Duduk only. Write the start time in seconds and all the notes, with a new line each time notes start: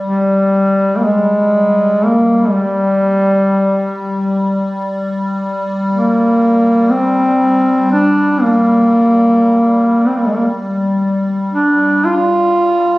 0.02 G3
0.97 A#3
1.03 G#3
2.05 A#3
2.46 G#3
2.53 G3
5.93 A#3
6.90 C4
7.92 D4
8.41 A#3
10.07 C4
10.16 A#3
10.26 G#3
10.36 A#3
11.52 D4
12.05 F4